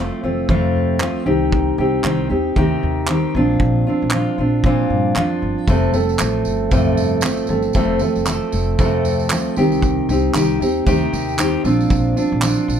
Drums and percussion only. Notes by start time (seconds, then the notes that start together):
0.49 kick
1.00 clap
1.52 kick
2.04 clap
2.56 kick
3.07 clap
3.60 kick
4.11 clap
4.64 kick
5.16 clap
5.68 kick, tambourine
5.94 tambourine
6.09 tambourine
6.19 clap, tambourine
6.45 tambourine
6.71 kick, tambourine
6.97 tambourine
7.21 clap, tambourine
7.37 tambourine
7.47 tambourine
7.62 tambourine
7.73 kick, tambourine
7.99 tambourine
8.15 tambourine
8.26 clap, tambourine
8.52 tambourine
8.79 kick, tambourine
9.05 tambourine
9.20 tambourine
9.29 clap, tambourine
9.56 tambourine
9.72 tambourine
9.82 kick, tambourine
10.09 tambourine
10.34 clap, tambourine
10.62 tambourine
10.87 kick, tambourine
11.14 tambourine
11.29 tambourine
11.39 clap, tambourine
11.65 tambourine
11.81 tambourine
11.90 kick, tambourine
12.17 tambourine
12.42 clap, tambourine
12.70 tambourine